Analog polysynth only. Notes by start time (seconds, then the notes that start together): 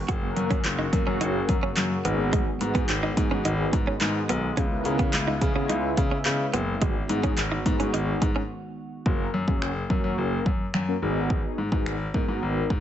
0.08 A#3 C#4 F#4 A#4
0.22 A#3 C#4 F#4 A#4
0.92 A#3 C#4 F#4 A#4
2.05 B3 D#4 F#4 G#4
2.61 B3 D#4 F#4 G#4
3.17 B3 D#4 F#4 G#4
4.57 B3 C#4 E4 G#4
4.71 B3 C#4 E4 A#4
5.41 B3 C#4 E4 G#4
6.81 B3 D#4 F#4 G#4
7.09 B3 D#4 F#4 G#4
7.65 B3 D#4 F#4 G#4
9.05 A#3 C#4 F#4 A#4
9.48 A#3 C#4 F#4 G#4
9.90 A#3 C#4 F#4 A#4
10.88 A#3 C#4 F#4 A#4
11.02 B3 D#4 F#4 G#4
11.72 B3 D#4 F#4 G#4
12.14 B3 D#4 F#4 A#4